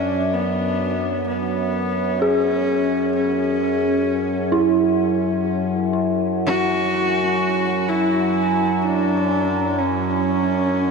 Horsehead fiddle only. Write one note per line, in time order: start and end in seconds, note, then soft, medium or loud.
0.00 0.35 C#4 medium
0.34 1.26 B3 medium
1.27 2.21 B3 medium
2.20 3.15 C#4 loud
3.15 5.00 C#4 medium
6.46 7.90 F#4 loud
7.89 8.87 E4 medium
8.85 9.80 D4 loud
9.79 10.91 C#4 medium